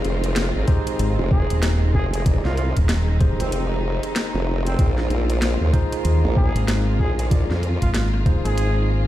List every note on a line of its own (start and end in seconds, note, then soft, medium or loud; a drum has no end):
0.00 9.07 D#3 medium
0.00 9.07 G#3 medium
0.00 4.74 C4 medium
0.00 0.65 D#4 medium
0.00 2.22 F4 medium
0.00 0.65 G4 medium
0.00 0.65 G#4 medium
0.00 0.65 C5 medium
0.05 0.53 F1 loud
0.05 closed hi-hat soft
0.24 closed hi-hat medium
0.36 snare loud
0.36 closed hi-hat medium
0.56 0.66 G#1 medium
0.68 2.23 D#4 loud
0.68 2.23 G4 medium
0.68 2.23 G#4 medium
0.68 2.23 C5 loud
0.68 kick loud
0.68 closed hi-hat soft
0.87 cross-stick soft
0.87 closed hi-hat medium
0.99 1.16 G#1 loud
0.99 closed hi-hat medium
1.19 1.47 F1 medium
1.31 1.58 G#4 medium
1.31 kick loud
1.50 1.92 D#1 loud
1.50 closed hi-hat medium
1.63 snare loud
1.63 closed hi-hat medium
1.94 2.42 F1 loud
1.94 2.07 G#4 medium
1.94 kick medium
2.14 2.21 G#4 medium
2.14 closed hi-hat medium
2.25 4.76 D#4 medium
2.25 2.47 D#4 medium
2.25 2.47 G4 medium
2.25 2.47 G#4 medium
2.25 2.47 D5 medium
2.25 kick loud
2.25 closed hi-hat medium
2.45 2.73 C2 medium
2.45 2.53 F4 medium
2.45 snare soft
2.57 2.70 F4 medium
2.57 closed hi-hat soft
2.77 3.20 D#1 loud
2.77 kick medium
2.77 closed hi-hat medium
2.89 snare loud
2.89 closed hi-hat medium
3.08 cross-stick soft
3.20 3.37 D1 loud
3.20 4.75 D#4 medium
3.20 4.76 G4 medium
3.20 4.75 G#4 medium
3.20 4.75 C5 medium
3.20 kick loud
3.20 closed hi-hat soft
3.40 4.00 F1 loud
3.40 3.48 C4 medium
3.40 cross-stick soft
3.40 closed hi-hat medium
3.52 3.64 C4 medium
3.52 closed hi-hat medium
4.03 cross-stick soft
4.03 closed hi-hat medium
4.16 snare loud
4.16 closed hi-hat medium
4.35 4.76 F1 loud
4.66 4.86 C4 medium
4.66 closed hi-hat medium
4.79 5.08 A#1 loud
4.79 9.07 A#3 medium
4.79 5.70 D#4 medium
4.79 5.70 F4 medium
4.79 9.07 F4 medium
4.79 5.70 G#4 medium
4.79 5.70 C5 medium
4.79 kick loud
4.79 closed hi-hat medium
4.98 snare soft
5.10 5.58 A#1 loud
5.10 closed hi-hat soft
5.30 closed hi-hat soft
5.42 snare loud
5.42 closed hi-hat medium
5.61 5.71 D#2 loud
5.73 7.28 D#4 loud
5.73 7.28 F4 medium
5.73 7.28 G#4 medium
5.73 7.28 C5 loud
5.73 kick loud
5.73 closed hi-hat soft
5.92 cross-stick soft
5.92 closed hi-hat soft
6.05 6.21 D#2 medium
6.05 closed hi-hat medium
6.24 6.53 A#1 medium
6.37 6.63 G#4 medium
6.37 kick loud
6.55 6.97 G#1 loud
6.55 closed hi-hat soft
6.68 snare loud
6.68 closed hi-hat medium
7.00 7.47 A#1 loud
7.00 7.12 G#4 medium
7.00 kick medium
7.19 7.27 G#4 medium
7.19 closed hi-hat soft
7.31 7.52 D#4 medium
7.31 7.52 F4 medium
7.31 7.52 G#4 medium
7.31 7.52 D5 medium
7.31 kick loud
7.31 closed hi-hat medium
7.50 7.79 F2 loud
7.50 snare soft
7.63 closed hi-hat soft
7.82 8.42 G#1 loud
7.82 7.90 F4 loud
7.82 kick medium
7.82 closed hi-hat medium
7.94 8.07 F4 medium
7.94 snare loud
7.94 closed hi-hat medium
8.14 cross-stick soft
8.26 9.07 D#4 medium
8.26 9.07 F4 medium
8.26 9.07 G#4 medium
8.26 9.07 C5 medium
8.26 kick loud
8.26 closed hi-hat soft
8.45 9.05 G#1 loud
8.45 8.89 G#4 medium
8.45 cross-stick soft
8.45 closed hi-hat soft
8.58 closed hi-hat medium